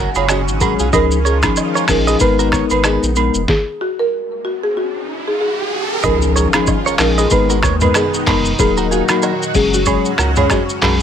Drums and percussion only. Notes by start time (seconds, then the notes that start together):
0.15 high agogo, shaker
0.28 finger snap, cross-stick, low woodblock, shaker
0.48 shaker
0.61 kick, high agogo, shaker
0.79 shaker
0.93 kick, high agogo, shaker
1.11 shaker
1.26 shaker
1.43 finger snap, kick, cross-stick, high agogo, shaker
1.56 low woodblock, shaker
1.76 shaker
1.88 finger snap, kick, cross-stick, open hi-hat, shaker
2.08 shaker
2.20 kick, high agogo, shaker
2.39 shaker
2.52 finger snap, kick, cross-stick, shaker
2.70 high agogo, shaker
2.84 finger snap, cross-stick, low woodblock, shaker
3.03 shaker
3.16 high agogo, shaker
3.34 shaker
3.48 kick, snare
6.03 kick, high agogo, shaker
6.22 shaker
6.36 shaker
6.53 finger snap, cross-stick, high agogo, shaker
6.67 kick, low woodblock, shaker
6.87 shaker
6.98 finger snap, cross-stick, clap, open hi-hat, shaker
7.18 shaker
7.30 kick, high agogo, shaker
7.50 shaker
7.63 finger snap, kick, cross-stick, shaker
7.80 mid tom, high agogo, shaker
7.94 finger snap, cross-stick, low woodblock, shaker
8.14 shaker
8.26 kick, clap, mid tom, open hi-hat, high agogo
8.45 shaker
8.59 kick, high agogo, shaker
8.77 shaker
8.92 shaker
9.08 finger snap, cross-stick, high agogo, shaker
9.22 low woodblock, shaker
9.42 shaker
9.55 kick, open hi-hat, shaker
9.74 shaker
9.86 kick, high agogo, shaker
10.05 shaker
10.18 finger snap, cross-stick, shaker
10.36 mid tom, high agogo, shaker
10.50 finger snap, kick, cross-stick, low woodblock, shaker
10.69 shaker
10.82 clap, mid tom, open hi-hat, high agogo